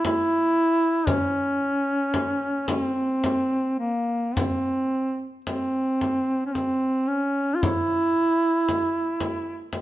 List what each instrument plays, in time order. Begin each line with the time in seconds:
0.05 duduk E4, frame drum
1.07 duduk C#4, frame drum
2.14 frame drum
2.68 duduk C#4, frame drum
2.80 duduk C4
3.24 frame drum
3.79 duduk A#3
4.35 duduk C4, frame drum
5.45 duduk C4, frame drum
6.01 frame drum
6.46 duduk C#4
6.54 duduk C4, frame drum
7.08 duduk C#4
7.56 duduk F4
7.63 duduk E4, frame drum
8.69 frame drum
9.20 frame drum
9.73 frame drum